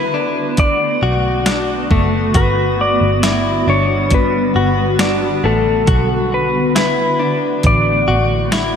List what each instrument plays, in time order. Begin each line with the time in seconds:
Already playing: picked electric bass B1, ambient pad D3 A3 B3 F#4, clean electric guitar E4, electric slide guitar B4
0.14 clean electric guitar D4
0.57 electric slide guitar D5, kick, closed hi-hat
1.02 picked electric bass B1, clean electric guitar F#4
1.46 clean electric guitar D4, snare, closed hi-hat
1.91 picked electric bass F#1, clean electric guitar A3, kick
2.34 picked electric bass G1, ambient pad D3 G3, clean electric guitar F#4, electric slide guitar B4, kick, closed hi-hat
2.81 electric slide guitar D5
3.01 picked electric bass G1
3.23 clean electric guitar E4, snare, closed hi-hat
3.67 picked electric bass G1, clean electric guitar D4, electric slide guitar C#5
4.10 electric slide guitar B4, kick, closed hi-hat
4.55 picked electric bass G1, clean electric guitar F#4
4.99 clean electric guitar D4, snare, closed hi-hat
5.44 picked electric bass A1, clean electric guitar A3, electric slide guitar A4
5.87 picked electric bass B1, ambient pad A3, clean electric guitar F#4, kick, closed hi-hat
6.34 electric slide guitar B4
6.76 clean electric guitar E4, electric slide guitar B4, snare, closed hi-hat
7.19 clean electric guitar D4
7.63 picked electric bass A1, ambient pad G3 E4, electric slide guitar D5, kick, closed hi-hat
8.08 picked electric bass A1, clean electric guitar F#4
8.52 clean electric guitar E4, snare, closed hi-hat